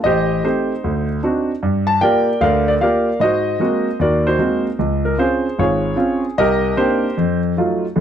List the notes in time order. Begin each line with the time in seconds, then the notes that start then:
0.04 A1 G4 C5 D#5
0.44 A3 C4 D#4 G4 C5
0.84 D2
1.23 C4 D4 D#4 F#4
1.63 G2
1.87 A5
2.01 A#3 F4 G4 A#4 D5 G5
2.41 D2 D3 A#4 D5 F5
2.68 D5
2.81 A#3 F4 G4 A#4 D5 F5
3.20 G#2 F#4 C5 D#5
3.60 G#3 A#3 C4 F#4
4.00 D#2 F#4 A#4 D5
4.27 D#4 F#4 C5
4.39 G#3 A#3 C4 F#4
4.79 C#2
5.05 A#4
5.18 C4 C#4 F4 G#4 C5
5.58 G#1 F4 G#4 C#5
5.96 C4 C#4 F4
6.38 C2 G4 A#4 D#5
6.77 A#3 C4 D4 D#4 G4 C5
7.17 F2
7.57 F#3 A3 D#4 F4
7.96 A#1 D3